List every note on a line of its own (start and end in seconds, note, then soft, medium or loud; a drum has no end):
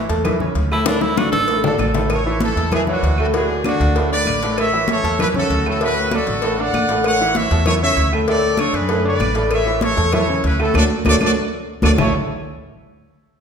0.09 0.53 E2 medium
0.09 0.22 A3 medium
0.09 0.22 A4 medium
0.09 0.22 A5 medium
0.09 cowbell medium
0.09 high conga soft
0.25 0.38 E3 medium
0.25 0.38 E4 medium
0.25 0.38 E5 medium
0.25 cowbell loud
0.25 high conga soft
0.25 low conga medium
0.25 claves medium
0.40 0.66 C#3 medium
0.40 0.66 C#4 medium
0.40 0.66 C#5 medium
0.40 high conga soft
0.40 low conga medium
0.55 1.27 D2 medium
0.55 cowbell medium
0.55 high conga soft
0.72 0.84 A2 medium
0.72 0.84 A3 medium
0.72 0.89 E4 loud
0.72 0.85 A4 medium
0.72 high conga soft
0.72 claves medium
0.86 1.13 A2 medium
0.86 1.13 A3 medium
0.86 1.03 D4 medium
0.86 1.13 A4 medium
0.86 cowbell loud
0.86 high bongo loud
0.86 high conga soft
1.01 1.19 E4 loud
1.01 high bongo medium
1.01 high conga soft
1.17 1.43 D3 medium
1.17 1.44 D4 medium
1.17 1.31 F#4 medium
1.17 1.44 D5 medium
1.17 cowbell medium
1.17 high bongo medium
1.17 high conga loud
1.17 claves medium
1.32 1.76 A1 medium
1.32 1.61 A4 loud
1.32 cowbell medium
1.32 high bongo medium
1.32 high conga soft
1.48 1.62 A2 medium
1.48 1.62 A3 medium
1.48 1.62 A4 medium
1.48 cowbell loud
1.48 high conga soft
1.63 1.89 D3 medium
1.63 1.89 D4 medium
1.63 2.08 F#4 medium
1.63 2.08 A4 medium
1.63 1.90 D5 medium
1.63 low bongo loud
1.63 high conga soft
1.78 2.51 A1 medium
1.78 cowbell medium
1.78 high conga medium
1.78 claves medium
1.94 2.07 A2 medium
1.94 2.08 A3 medium
1.94 2.08 A4 medium
1.94 cowbell medium
1.94 low bongo medium
1.94 high conga soft
2.10 2.39 A4 medium
2.10 2.40 C#5 medium
2.10 cowbell loud
2.10 high conga soft
2.10 claves medium
2.25 2.51 E3 medium
2.25 2.52 E4 medium
2.25 2.52 E5 medium
2.25 high conga soft
2.40 2.71 E4 medium
2.40 2.71 A4 medium
2.40 cowbell medium
2.40 high conga loud
2.56 2.99 E2 medium
2.56 2.70 A3 medium
2.56 2.70 A4 medium
2.56 2.70 A5 medium
2.56 cowbell medium
2.56 high conga soft
2.72 2.85 E3 medium
2.72 2.85 E4 medium
2.72 2.81 E4 medium
2.72 2.81 G#4 medium
2.72 2.86 E5 medium
2.72 cowbell loud
2.72 high conga soft
2.72 low conga loud
2.72 claves medium
2.87 3.13 E3 medium
2.87 3.17 D4 medium
2.87 3.14 E4 medium
2.87 3.17 F#4 medium
2.87 3.14 C#5 medium
2.87 high conga soft
2.87 low conga medium
3.03 3.75 D2 medium
3.03 cowbell medium
3.03 high conga soft
3.18 3.31 A2 medium
3.18 3.32 A3 medium
3.18 3.27 D4 medium
3.18 3.27 F#4 medium
3.18 3.32 A4 medium
3.18 high conga soft
3.18 claves medium
3.33 3.59 A2 medium
3.33 3.60 A3 medium
3.33 3.63 D4 medium
3.33 3.60 F#4 medium
3.33 3.63 G#4 medium
3.33 cowbell loud
3.33 high conga soft
3.49 high conga soft
3.64 3.90 D3 medium
3.64 3.90 D4 medium
3.64 4.09 D4 medium
3.64 4.08 F#4 medium
3.64 3.91 D5 medium
3.64 cowbell medium
3.64 high conga loud
3.64 claves medium
3.80 4.23 D2 loud
3.80 cowbell medium
3.80 high conga soft
3.96 4.08 A2 medium
3.96 4.09 A3 medium
3.96 4.09 A4 medium
3.96 cowbell loud
3.96 high conga soft
4.11 4.37 D3 medium
4.11 4.37 D4 medium
4.11 4.54 B4 medium
4.11 4.55 D5 loud
4.11 4.37 D5 medium
4.11 high conga soft
4.26 4.98 A1 medium
4.26 cowbell medium
4.26 high conga medium
4.26 claves medium
4.41 4.68 A2 medium
4.41 4.68 A3 medium
4.41 4.68 A4 medium
4.41 cowbell medium
4.41 high conga soft
4.57 4.87 C#5 medium
4.57 4.87 E5 loud
4.57 cowbell loud
4.57 high conga soft
4.57 claves medium
4.73 4.98 E3 medium
4.73 4.99 E4 medium
4.73 4.99 E5 medium
4.73 high conga soft
4.88 5.18 A4 medium
4.88 5.18 C#5 loud
4.88 cowbell medium
4.88 high conga loud
5.03 5.47 E2 medium
5.03 5.16 A3 medium
5.03 5.17 A4 medium
5.03 5.17 A5 medium
5.03 cowbell medium
5.03 high conga soft
5.19 5.33 E3 medium
5.19 5.27 E4 medium
5.19 5.33 E4 medium
5.19 5.27 B4 loud
5.19 5.33 E5 medium
5.19 cowbell loud
5.19 high conga soft
5.19 low conga medium
5.19 claves medium
5.34 5.60 C#3 medium
5.34 5.60 C#4 medium
5.34 5.64 F#4 medium
5.34 5.64 A4 medium
5.34 5.61 C#5 medium
5.34 high conga soft
5.34 low conga medium
5.50 6.22 D2 medium
5.50 cowbell medium
5.50 high conga soft
5.64 5.79 A2 medium
5.64 5.79 A3 medium
5.64 5.81 F#4 medium
5.64 5.79 A4 medium
5.64 5.81 A4 medium
5.64 high conga soft
5.64 claves medium
5.81 6.07 A2 medium
5.81 6.07 A3 medium
5.81 6.11 F#4 medium
5.81 6.08 A4 medium
5.81 6.11 B4 loud
5.81 cowbell loud
5.81 high conga soft
5.96 high conga soft
6.11 6.38 D3 medium
6.11 6.39 D4 medium
6.11 6.59 F#4 medium
6.11 6.59 A4 loud
6.11 6.39 D5 medium
6.11 cowbell medium
6.11 high conga loud
6.11 claves medium
6.27 6.70 A1 medium
6.27 cowbell medium
6.27 high conga soft
6.42 6.56 A2 medium
6.42 6.56 A3 medium
6.42 6.56 A4 medium
6.42 cowbell loud
6.42 high conga soft
6.58 6.84 D3 medium
6.58 6.84 D4 medium
6.58 7.05 D5 medium
6.58 6.85 D5 medium
6.58 7.05 F#5 loud
6.58 high conga soft
6.74 7.45 A1 medium
6.74 cowbell medium
6.74 high conga medium
6.74 claves medium
6.89 7.15 A2 medium
6.89 7.15 A3 medium
6.89 7.15 A4 medium
6.89 cowbell medium
6.89 high conga soft
7.04 7.34 C#5 medium
7.04 7.34 F#5 loud
7.04 cowbell loud
7.04 high conga soft
7.04 claves medium
7.20 7.46 E3 medium
7.20 7.46 E4 medium
7.20 7.46 E5 medium
7.20 high conga soft
7.35 7.66 C#5 medium
7.35 7.66 E5 loud
7.35 cowbell medium
7.35 high conga loud
7.51 7.94 E2 loud
7.51 7.64 A3 medium
7.51 7.64 A4 medium
7.51 7.64 A5 medium
7.51 cowbell medium
7.51 high conga soft
7.66 7.79 E3 medium
7.66 7.79 E4 medium
7.66 7.74 A4 medium
7.66 7.74 C#5 loud
7.66 7.80 E5 medium
7.66 cowbell loud
7.66 high conga soft
7.66 low conga medium
7.66 claves medium
7.81 8.08 C#3 medium
7.81 8.08 C#4 medium
7.81 8.10 C#5 medium
7.81 8.08 C#5 medium
7.81 8.10 E5 loud
7.81 high conga soft
7.97 8.69 D2 medium
7.97 cowbell medium
7.97 high conga soft
8.12 8.25 A2 medium
8.12 8.25 A3 medium
8.12 8.26 A4 medium
8.12 high conga soft
8.12 claves medium
8.27 8.54 A2 medium
8.27 8.54 A3 medium
8.27 8.56 A4 medium
8.27 8.54 A4 medium
8.27 8.57 D5 loud
8.27 cowbell loud
8.27 high conga soft
8.43 high conga soft
8.57 8.84 D3 medium
8.57 8.85 D4 medium
8.57 8.74 A4 medium
8.57 8.74 C#5 loud
8.57 8.85 D5 medium
8.57 cowbell medium
8.57 high conga loud
8.57 claves medium
8.73 9.17 F#2 medium
8.73 9.05 G#4 medium
8.73 9.05 B4 loud
8.73 cowbell medium
8.73 high conga soft
8.89 9.02 A2 medium
8.89 9.02 A3 medium
8.89 9.02 A4 medium
8.89 cowbell loud
8.89 high conga soft
9.05 9.30 D3 medium
9.05 9.30 D4 medium
9.05 9.49 B4 medium
9.05 9.31 D5 medium
9.05 9.49 D5 loud
9.05 high conga soft
9.20 9.92 A1 loud
9.20 cowbell medium
9.20 high conga medium
9.20 claves medium
9.35 9.61 A2 medium
9.35 9.61 A3 medium
9.35 9.61 A4 medium
9.35 cowbell medium
9.35 high conga soft
9.51 9.81 C#5 medium
9.51 9.81 E5 loud
9.51 cowbell loud
9.51 high conga soft
9.51 claves medium
9.66 9.92 E3 medium
9.66 9.92 E4 medium
9.66 9.92 E5 medium
9.66 high conga soft
9.81 10.13 A4 medium
9.81 10.13 C#5 loud
9.81 cowbell medium
9.81 high conga loud
9.97 10.41 E2 loud
9.97 10.10 A3 medium
9.97 10.10 A4 medium
9.97 10.10 A5 medium
9.97 cowbell medium
9.97 high conga soft
10.12 10.26 E3 medium
10.12 10.26 E4 medium
10.12 10.43 A4 medium
10.12 10.42 C#5 loud
10.12 10.26 E5 medium
10.12 cowbell loud
10.12 high conga soft
10.12 low conga loud
10.12 claves medium
10.29 10.54 C#3 medium
10.29 10.54 C#4 medium
10.29 10.54 C#5 medium
10.29 high conga soft
10.44 10.73 D2 medium
10.44 10.59 E4 medium
10.44 10.59 B4 medium
10.44 cowbell medium
10.44 high conga soft
10.59 10.72 A2 medium
10.59 10.73 A3 medium
10.59 10.75 F#4 medium
10.59 10.73 A4 medium
10.59 10.75 A4 medium
10.59 high conga soft
10.59 claves medium
10.74 10.86 D2 loud
10.74 10.85 F#3 loud
10.74 10.85 A3 medium
10.74 10.85 D4 loud
10.74 10.83 F#4 medium
10.74 10.84 A4 loud
10.74 10.83 D5 medium
10.74 cowbell loud
10.74 high conga medium
10.74 claves loud
11.05 11.17 D2 loud
11.05 11.16 F#3 loud
11.05 11.16 A3 loud
11.05 11.16 D4 loud
11.05 11.15 F#4 loud
11.05 11.15 A4 loud
11.05 11.15 D5 loud
11.05 cowbell loud
11.05 high conga loud
11.05 claves loud
11.21 11.31 F#3 medium
11.21 11.31 A3 medium
11.21 11.32 D4 loud
11.21 11.31 F#4 medium
11.21 11.30 A4 medium
11.21 11.31 D5 medium
11.21 cowbell medium
11.21 high conga loud
11.21 claves loud
11.82 11.95 D2 loud
11.82 11.93 F#3 medium
11.82 11.93 A3 medium
11.82 11.93 D4 medium
11.82 11.91 F#4 medium
11.82 11.90 A4 medium
11.82 11.91 D5 loud
11.82 cowbell loud
11.82 high conga loud
11.82 claves loud
11.98 12.13 A1 loud
11.98 12.13 A3 medium
11.98 12.13 E4 medium
11.98 12.13 A4 medium
11.98 12.13 C#5 medium
11.98 12.13 E5 medium
11.98 12.13 A5 medium
11.98 low bongo loud
11.98 low conga medium
11.98 claves loud